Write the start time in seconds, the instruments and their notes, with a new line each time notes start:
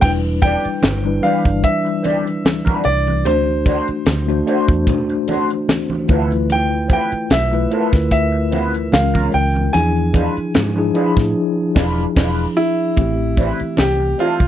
0.01 fingered electric bass E1, tine electric piano G3 D4 E4 B4, grand piano G5, kick, crash, muted conga
0.25 closed hi-hat
0.42 clean electric guitar B3 D4 G4 D5, grand piano G5, kick, closed hi-hat, muted conga
0.65 muted fingered electric bass stroke, closed hi-hat
0.83 fingered electric bass G1, snare, closed hi-hat, high conga
1.04 tine electric piano G3 D4 E4 B4, muted clean electric guitar stroke
1.22 tine electric piano E3 G3 D4 D5, clean electric guitar B3 D4 G4 B4, grand piano F5, open hi-hat
1.45 fingered electric bass G1, muted clean electric guitar stroke, kick, closed hi-hat
1.63 grand piano E5, muted clean electric guitar stroke, kick, closed hi-hat
1.85 muted clean electric guitar stroke, closed hi-hat
2.02 clean electric guitar B3 D4 G4 D5, closed hi-hat, muted conga
2.25 muted clean electric guitar stroke, closed hi-hat
2.44 muted clean electric guitar stroke, snare, closed hi-hat, high conga
2.65 clean electric guitar B3 D4 G4 B4, kick, high conga
2.84 fingered electric bass C2, grand piano D5, muted clean electric guitar stroke, closed hi-hat
3.07 muted clean electric guitar stroke, closed hi-hat, high conga
3.25 fingered electric bass D2, tine electric piano A3 D4 F#4 C5, grand piano C5, closed hi-hat, muted conga
3.66 clean electric guitar A3 D4 F#4 C5, kick, closed hi-hat, muted conga
3.88 muted fingered electric bass stroke, closed hi-hat
4.06 fingered electric bass D2, snare, closed hi-hat, high conga
4.28 tine electric piano A3 D4 F#4 C5, muted clean electric guitar stroke, closed hi-hat
4.46 clean electric guitar A3 D4 F#4 C5, tine electric piano A3 D4 F#4 C5, closed hi-hat
4.68 fingered electric bass E2, muted clean electric guitar stroke, kick, closed hi-hat
4.87 muted clean electric guitar stroke, kick, closed hi-hat, muted conga, low conga
5.09 muted clean electric guitar stroke, closed hi-hat
5.28 clean electric guitar A3 D4 F#4 C5, closed hi-hat, muted conga
5.50 muted clean electric guitar stroke, closed hi-hat
5.69 snare, closed hi-hat, high conga
5.90 muted clean electric guitar stroke, high conga
6.08 fingered electric bass D2, clean electric guitar F3 B3 E4 A4, tine electric piano A3 E4 F4 B4, kick, closed hi-hat
6.30 muted clean electric guitar stroke, closed hi-hat, high conga
6.50 grand piano G5, closed hi-hat, muted conga
6.88 clean electric guitar F3 B3 E4 B4, kick, closed hi-hat, muted conga
6.93 grand piano G5
7.12 muted fingered electric bass stroke, closed hi-hat
7.30 fingered electric bass B1, grand piano E5, snare, closed hi-hat, high conga
7.51 tine electric piano A3 E4 F4 B4, muted clean electric guitar stroke, closed hi-hat
7.70 clean electric guitar F3 B3 E4 A4, tine electric piano A3 E4 F4 A#4, closed hi-hat
7.81 tine electric piano B4
7.92 fingered electric bass D2, muted clean electric guitar stroke, kick, snare, closed hi-hat
8.11 grand piano E5, muted clean electric guitar stroke, kick, closed hi-hat
8.32 muted clean electric guitar stroke
8.51 clean electric guitar F3 B3 E4 B4, closed hi-hat, muted conga
8.74 muted clean electric guitar stroke, closed hi-hat
8.92 fingered electric bass C#2, tine electric piano G#3 C#4 F4 A#4, grand piano F5, muted clean electric guitar stroke, snare, closed hi-hat, high conga
9.14 clean electric guitar G#3 C#4 F4 A#4, kick, high conga
9.32 fingered electric bass C#2, grand piano G5, muted clean electric guitar stroke, open hi-hat
9.54 muted clean electric guitar stroke, closed hi-hat, high conga
9.73 fingered electric bass E2, tine electric piano F3 D4 E4 G#4, grand piano G#5, closed hi-hat, muted conga
9.96 closed hi-hat
10.13 clean electric guitar G#3 D4 F4 B4, kick, closed hi-hat, muted conga
10.37 muted fingered electric bass stroke, closed hi-hat
10.54 fingered electric bass G#2, snare, closed hi-hat, high conga
10.76 tine electric piano F3 D4 E4 G#4, muted clean electric guitar stroke
10.94 tine electric piano F3 D4 E4 G#4, clean electric guitar G#3 D4 F4 B4, closed hi-hat
11.16 fingered electric bass A2, muted clean electric guitar stroke, kick, snare, closed hi-hat
11.75 fingered electric bass E1, clean electric guitar G#3 D4 F4 B4, kick, snare, crash
12.15 fingered electric bass E1, clean electric guitar G#3 D4 F4 B4, kick, snare, crash
12.57 grand piano E4
12.96 fingered electric bass A1, tine electric piano E3 A3 C4 G4, kick, closed hi-hat, muted conga
13.37 clean electric guitar G3 C4 E4 B4, kick, closed hi-hat, muted conga
13.60 muted fingered electric bass stroke, closed hi-hat
13.77 fingered electric bass C2, grand piano G4, snare, closed hi-hat, high conga
14.00 muted clean electric guitar stroke
14.18 clean electric guitar G3 C4 E4 A4, grand piano F4, closed hi-hat
14.40 fingered electric bass C2, muted clean electric guitar stroke, kick, closed hi-hat